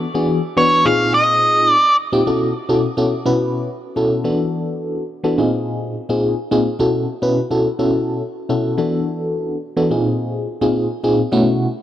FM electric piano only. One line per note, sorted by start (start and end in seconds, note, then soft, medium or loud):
0.14 0.41 E3 medium
0.14 0.41 B3 medium
0.14 0.41 D4 medium
0.14 0.41 F#4 medium
0.14 0.41 G#4 loud
0.56 0.85 E3 medium
0.56 0.85 B3 medium
0.56 0.85 D4 medium
0.56 0.85 F#4 medium
0.56 0.85 B4 medium
0.85 1.76 A#2 medium
0.85 1.76 C4 medium
0.85 1.76 D#4 medium
0.85 1.76 F4 medium
0.85 1.76 G#4 medium
2.12 2.21 A#2 medium
2.12 2.21 C4 medium
2.12 2.21 D#4 medium
2.12 2.21 F4 medium
2.12 2.21 G4 loud
2.27 2.53 B2 medium
2.27 2.53 C#4 medium
2.27 2.53 E4 medium
2.27 2.53 F#4 medium
2.27 2.53 A4 medium
2.69 2.86 B2 medium
2.69 2.86 C#4 medium
2.69 2.87 E4 medium
2.69 2.87 F#4 medium
2.69 2.87 A4 medium
2.97 3.15 B2 medium
2.97 3.15 C#4 medium
2.97 3.15 E4 medium
2.97 3.15 F#4 medium
2.97 3.15 A4 medium
3.25 3.69 B2 medium
3.25 3.69 C#4 medium
3.25 3.69 E4 medium
3.25 3.69 F#4 medium
3.25 3.70 B4 loud
3.96 4.25 B2 medium
3.96 4.25 C#4 medium
3.96 4.25 E4 medium
3.96 4.23 F#4 medium
3.96 4.24 A4 medium
4.24 5.04 E3 medium
4.24 5.04 B3 medium
4.24 5.04 D4 medium
4.24 5.04 F#4 medium
4.24 5.04 A4 medium
5.24 5.38 E3 medium
5.24 5.38 B3 medium
5.24 5.38 D4 medium
5.24 5.38 F#4 medium
5.24 5.38 A4 medium
5.38 5.95 A#2 medium
5.38 5.95 C4 medium
5.38 5.95 D#4 medium
5.38 5.95 F4 medium
5.38 5.95 G#4 medium
6.09 6.35 A#2 medium
6.09 6.35 C4 medium
6.09 6.35 D#4 medium
6.09 6.35 F4 medium
6.09 6.36 G#4 loud
6.51 6.69 A#2 medium
6.51 6.69 C4 medium
6.51 6.69 D#4 medium
6.51 6.69 F4 medium
6.51 6.69 G#4 loud
6.79 7.06 B2 medium
6.79 7.06 C#4 medium
6.79 7.06 E4 medium
6.79 7.06 F#4 medium
6.79 7.06 A4 medium
7.22 7.39 B2 medium
7.22 7.39 C#4 medium
7.22 7.40 E4 medium
7.22 7.40 F#4 medium
7.22 7.40 B4 loud
7.50 7.68 B2 medium
7.50 7.68 C#4 medium
7.50 7.68 E4 medium
7.50 7.68 F#4 medium
7.50 7.68 A4 medium
7.79 8.22 B2 medium
7.79 8.22 C#4 medium
7.79 8.22 E4 medium
7.79 8.23 F#4 medium
7.79 8.23 A4 loud
8.49 8.78 B2 medium
8.49 8.78 C#4 medium
8.49 8.78 E4 medium
8.49 8.77 F#4 medium
8.49 8.77 A4 medium
8.78 9.57 E3 medium
8.78 9.57 B3 medium
8.78 9.57 D4 medium
8.78 9.57 F#4 medium
8.78 9.57 A4 medium
9.76 9.91 E3 medium
9.76 9.91 B3 medium
9.76 9.91 D4 medium
9.76 9.91 F#4 medium
9.76 9.91 A4 medium
9.91 10.47 A#2 medium
9.91 10.47 C4 medium
9.91 10.48 D#4 medium
9.91 10.48 F4 medium
9.91 10.48 G#4 medium
10.61 10.88 A#2 medium
10.61 10.88 C4 medium
10.61 10.88 D#4 medium
10.61 10.88 F4 medium
10.61 10.88 G#4 medium
11.04 11.21 A#2 medium
11.04 11.21 C4 medium
11.04 11.21 D#4 medium
11.04 11.22 F4 medium
11.04 11.22 G#4 medium
11.32 11.67 B2 loud
11.32 11.67 A3 medium
11.32 11.67 C#4 medium
11.32 11.67 E4 loud
11.32 11.67 F#4 loud